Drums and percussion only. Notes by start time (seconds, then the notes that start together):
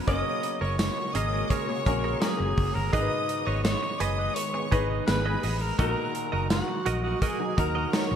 0.08 kick, closed hi-hat, cowbell
0.43 closed hi-hat
0.79 snare, closed hi-hat, tambourine, cowbell
1.15 closed hi-hat
1.50 kick, closed hi-hat, cowbell
1.86 kick, closed hi-hat
2.22 snare, closed hi-hat, tambourine, cowbell
2.58 kick, open hi-hat
2.93 kick, closed hi-hat, cowbell
3.29 closed hi-hat
3.65 snare, closed hi-hat, tambourine, cowbell
4.00 closed hi-hat
4.36 closed hi-hat, cowbell
4.72 kick, closed hi-hat
5.08 snare, closed hi-hat, tambourine, cowbell
5.43 open hi-hat
5.79 kick, closed hi-hat, cowbell
6.15 closed hi-hat
6.50 snare, closed hi-hat, tambourine, cowbell
6.86 closed hi-hat
7.22 kick, closed hi-hat, cowbell
7.58 kick, closed hi-hat
7.93 snare, closed hi-hat, tambourine, cowbell